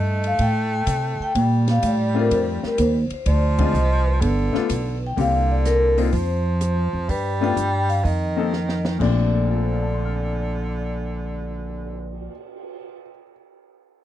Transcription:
Already playing: G2 A3 D#5
0.24 F5, ride
0.39 A2 G5, kick, ride
0.87 C3, kick, hi-hat pedal, ride
1.20 G5, muted upright bass stroke
1.35 A#2 G3, kick, ride
1.68 F5, snare, ride
1.83 A2, kick, hi-hat pedal, ride
1.87 D5
2.14 A3 C4 D4 F4
2.19 A#4
2.31 F2 C5, kick, ride
2.63 A#4, muted upright bass stroke, snare
2.78 D#2 C5, kick, hi-hat pedal, ride
3.10 C5, muted upright bass stroke, ride
3.26 D2 F3 D5, kick, ride
3.58 G#3 C4 D4 F4 D#5, kick, ride
3.74 C2, hi-hat pedal
4.08 B4
4.21 G1 D3, kick, ride
4.53 A3 B3 D4 F4, muted upright bass stroke, snare
4.69 B1, kick, hi-hat pedal, ride
5.07 G5
5.17 C2 D3 A#3 C4 D4 G4, kick, open hi-hat
5.21 F5
5.51 D5
5.65 A#4, snare, closed hi-hat
5.97 A#3 C4 D#4 F4 C5, open hi-hat
6.12 F2 F3, kick, open hi-hat
6.61 cross-stick, closed hi-hat
6.93 F2
7.09 G2 G3 B4, kick, open hi-hat
7.41 A3 B3 D4 F4 G5
7.57 G2, closed hi-hat
7.89 F5, open hi-hat
8.04 F2 D#3 D#5, kick, open hi-hat
8.36 A#3 C4 D#4 A4
8.53 snare
8.69 snare
8.85 snare
8.99 A#1 A#2 D3 F3 A3 C4 D4 D5, kick, crash
9.33 cymbal swell
9.48 F4
9.56 A4
9.64 C5
9.73 F5
9.83 A5
9.94 C6
10.05 F6

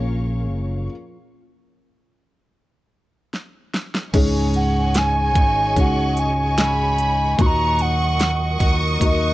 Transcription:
Already playing: A#1 F3 A#3 C#4 F4 G#4 A#4 C#5 F5 C#6
0.49 F#1
3.34 snare
3.74 snare
3.95 snare
4.13 C#2 G#2 C#3 G#3 C#4 D#4 G#4 C#5 D#5 G#5 C#6, kick, closed hi-hat, crash
4.54 F#5, closed hi-hat
4.95 G#5, snare, closed hi-hat
5.35 G#1 C#4 D#4 C#5, kick, closed hi-hat
5.76 C#2 G#3 C#4 D#4 F#4 C#5 F#5, kick, closed hi-hat
6.17 G#5, closed hi-hat
6.57 G#3 C#4 D#4 C#5 B5, snare, closed hi-hat
6.98 closed hi-hat
7.38 D#2 A#2 D#3 F#3 A#3 D#4 F#4 A#4 D#5 C#6 D#6, kick, closed hi-hat
7.46 A#5
7.79 F#5, closed hi-hat
8.19 snare, closed hi-hat
8.59 D#2 D#4 F#4 A#4, kick, closed hi-hat
9.00 D#2 F#3 A#3 D#4 F#4 A#4, kick, closed hi-hat
9.04 D#5

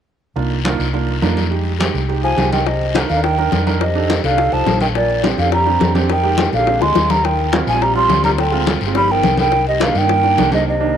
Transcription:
0.36 C2 A#3 D4 D#4 F4, high conga, long guiro
0.51 high conga
0.64 A#3 D4 D#4 F4, high conga, short guiro
0.79 C2, short guiro
0.93 A#3 D4 D#4 F4, high conga, long guiro
1.08 high conga
1.22 F2 A#3 D4 D#4 F4, high conga, short guiro
1.37 high conga, short guiro
1.50 G#3 D#4 G4, high conga, long guiro
1.66 high conga
1.79 G#3 D#4 G4, high conga, short guiro
1.94 C2, high conga, short guiro
2.09 G#3 D#4 G4, high conga, long guiro
2.24 F3 G#5, high conga
2.37 C2 G#3 D#4 G4, high conga, short guiro
2.52 D#3 G5, high conga, short guiro
2.67 C3 D#5, high bongo, high conga, long guiro
2.81 high conga
2.95 D4 D#4 A#4, high bongo, high conga, short guiro
3.09 D#2 D3 F5, high bongo, short guiro
3.16 D4 D#4 A#4
3.24 D#3 G5, high bongo, high conga, long guiro
3.38 D4 D#4 A#4, high bongo, high conga
3.52 F2 D4 D#4 A#4, high bongo, low bongo, high conga, short guiro
3.67 D4 D#4 A#4, high bongo, high conga, short guiro
3.81 C3 D#5, high bongo, high conga, long guiro
3.95 D4 D#4 G4 A4, high conga
4.10 high bongo, high conga, short guiro
4.24 C2 D3 F5, high bongo, high conga, short guiro
4.30 D4 D#4 G4 A4
4.37 D4 D#4 G4 A4, high bongo, high conga, long guiro
4.52 C2 F3 A5, high bongo, high conga
4.66 A#1, high bongo, low bongo, high conga, short guiro
4.81 D#3 G5, high bongo, high conga, short guiro
4.95 A#2 D5, high bongo, high conga, long guiro
5.10 high conga
5.23 C4 D4 G4, high bongo, high conga, short guiro
5.38 F2 D3 F5, high bongo, short guiro
5.44 C4 D4 G4
5.52 G3 A#5, high bongo, high conga, long guiro
5.66 C4 D4 G4, high bongo, high conga
5.79 F2 C4 D4 G4, high bongo, low bongo, high conga, short guiro
5.94 C4 D4 G4, high bongo, high conga, short guiro
6.10 D#3 G5, high bongo, high conga, long guiro
6.23 G#3 D#4 G4, high conga
6.38 high bongo, high conga, short guiro
6.52 A#1 D3 F5, high bongo, high conga, short guiro
6.59 G#3 D#4 G4
6.66 G#3 C4 D4 G4, high bongo, high conga, long guiro
6.81 D2 G#3 C6, high bongo, high conga
6.95 D#2, high bongo, high conga, short guiro
7.10 G3 A#5, low bongo, high conga, short guiro
7.24 D#3 G5, high bongo, high conga, long guiro
7.39 high conga
7.52 G3 C4 F4, high bongo, high conga, short guiro
7.67 A#1 F3 G#5, high bongo, short guiro
7.73 G3 C4 F4
7.81 G3 A#5, high bongo, high conga, long guiro
7.95 G3 C4 F4 C6, high bongo, high conga
8.09 D2 G3 C4 F4, high bongo, low bongo, high conga, short guiro
8.23 G3 C4 F4 A#5, high bongo, high conga, short guiro
8.38 D3 G5, high bongo, high conga, long guiro
8.52 G#3 C4 F4, high conga
8.67 high bongo, high conga, short guiro
8.81 G1, high bongo, high conga, short guiro
8.87 G#3 C4 F4
8.94 F3 G3 B3 D#4 B5, high bongo, high conga, long guiro
9.09 D#3 G5, high bongo, high conga
9.23 C2, high bongo, low bongo, high conga, short guiro
9.37 D#3 G5, high bongo, high conga, short guiro
9.52 high bongo, high conga, long guiro
9.67 C3 D#5, high conga
9.80 C3 D#3 A#3 D4 F5, high bongo, high conga, short guiro
9.95 G2 D#3 G5, high bongo, short guiro
10.01 D#3 A#3 D4
10.09 high bongo, high conga, long guiro
10.23 D#3 A#3 D4, high bongo, high conga
10.37 C2 D#3 A#3 D4, high bongo, low bongo, high conga, short guiro
10.51 C3 D#3 A#3 D4 D#5, high bongo, high conga, short guiro
10.67 C3 D#5
10.80 D#3 A#3 D4

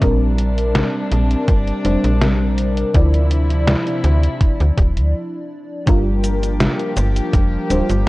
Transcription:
0.01 A#1 C3 G3 C4 D4 A#4, kick, closed hi-hat
0.38 closed hi-hat
0.58 closed hi-hat
0.75 snare, closed hi-hat
1.12 A#1, closed hi-hat
1.31 closed hi-hat
1.48 G1, kick, closed hi-hat
1.67 closed hi-hat
1.84 F1 G3 C4 D4 C5, closed hi-hat
2.04 A#1, closed hi-hat
2.21 G3 C4 D4 A#4, snare, closed hi-hat
2.58 closed hi-hat
2.77 closed hi-hat
2.93 D2 C3 F3 D4 E4 D5, kick, closed hi-hat
3.14 closed hi-hat
3.31 closed hi-hat
3.50 closed hi-hat
3.67 snare, closed hi-hat
3.87 closed hi-hat
4.04 D2, closed hi-hat
4.23 closed hi-hat
4.41 kick, closed hi-hat
4.60 D2, closed hi-hat
4.77 D1, kick, closed hi-hat
4.97 D2, closed hi-hat
5.86 G1 F3 G3 A#3 D4 F4 G4 A#4, kick, closed hi-hat, cabasa
6.24 closed hi-hat, cabasa
6.43 closed hi-hat, cabasa
6.60 snare, closed hi-hat, cabasa
6.80 closed hi-hat
6.97 G1, closed hi-hat, cabasa
7.16 closed hi-hat, cabasa
7.34 F1, kick, closed hi-hat, cabasa
7.70 D1 G3 D4 F4 C5, closed hi-hat, cabasa
7.89 G1, closed hi-hat, cabasa

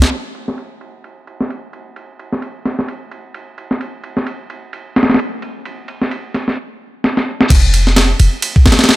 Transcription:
0.02 snare, ride
0.12 ride
0.35 ride
0.48 snare
0.58 ride
0.81 ride
1.04 ride
1.27 ride
1.41 snare
1.50 ride
1.73 ride
1.96 ride
2.19 ride
2.33 snare
2.42 ride
2.65 snare, ride
2.79 snare
2.88 ride
3.11 ride
3.34 ride
3.58 ride
3.71 snare
3.81 ride
4.04 ride
4.17 snare
4.27 ride
4.50 ride
4.73 ride
4.96 snare, ride
5.03 snare, ride
5.10 snare, ride
5.14 snare, ride
5.19 ride
5.42 ride
5.65 ride
5.88 ride
6.02 snare
6.11 ride
6.34 snare, ride
6.48 snare
7.04 snare
7.17 snare
7.41 snare
7.50 F1, kick, crash, ride
7.74 ride
7.87 snare
7.96 snare, ride
8.20 F1, ride
8.42 ride
8.56 kick
8.66 G#1, snare, ride
8.72 snare, ride
8.79 snare, ride
8.84 snare, ride
8.89 snare, ride

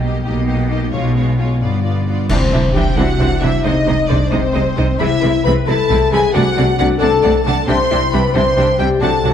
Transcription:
Already playing: B1 B2 G3 G4
0.01 A#3 G4 D#5
0.23 B1 A#3 D#4 G4 D#5
0.27 B2
0.47 A#3 G4 D#5
0.70 A#3 D#4 G4 D#5
0.92 B1 B2 G#3 F4 C#5
1.15 G#3 C#4 F4 C#5
1.38 G#3 F4 G#4 C#5
1.61 G1 G2 B3 F4 D5
1.84 B3 D4 F4 D5
2.07 B3 F4 B4 D5
2.28 C2 C3 E3 C4 D4 C5 E5, concert bass drum, crash
2.52 C2 C3 E3 D4 C5 E5
2.72 C2 E3 D4 G4 C5 G5
2.76 C3 C5 E5
2.96 C2 C3 E3 D4 F#4 C5 E5 F#5
3.19 C2 C3 E3 D4 C5 D5 E5
3.39 C2 C3 E3 D4 E4 C5 E5
3.43 C5 E5
3.64 C2 C3 G#3 D#4 C5 D#5
3.86 C2 C3 G#3 D#4 C5 D#5
4.09 C2 C3 G#3 D4 D#4 C5 D5 D#5
4.31 C2 C3 G#3 C4 D#4 C5 D#5
4.53 C2 C3 G#3 D#4 C5 D#5
4.77 C2 C3 G#3 D#4 C5 D#5
4.99 C2 C3 G#3 E4 B4 E5 B5
5.21 C2 C3 G#3 E4 B4 B5
5.44 C2 C3 G#3 E4 B4 B5
5.67 C2 C3 G#3 E4 A4 B4 A5 B5
5.90 C2 C3 G#3 E4 B4 E5 B5
6.12 C2 C3 G#3 E4 G#4 B4 G#5 B5
6.33 C2 C3 A3 D4 F#4 D5 F#5
6.58 C2 C3 A3 D4 D5 F#5
6.77 C2 C3 A3 D4 F#4 D5 F#5
6.98 C2 C3 A4 D5 F#5 A5
7.02 A3 D4
7.23 C2 C3 A3 D4 D5 F#5
7.43 C2 A4 F#5 A5
7.47 C3 A3 D4 D5
7.67 C2 C3 G3 D4 C5 E5 G5 C6
7.91 C2 C3 G3 D4 E4 E5 G5
8.12 C2 C3 G3 D4 B4 D5 E5 G5 B5
8.33 C2 C3 G3 D4 C5 E5 G5 C6
8.57 C2 C3 G3 D4 E5 G5
8.79 C2 C3 G3 D4 G4 D5 E5 G5
9.01 C2 C3 F#3 D4 A4 F#5 A5
9.23 C2 C3 F#3 D4 F#4 F#5 A5

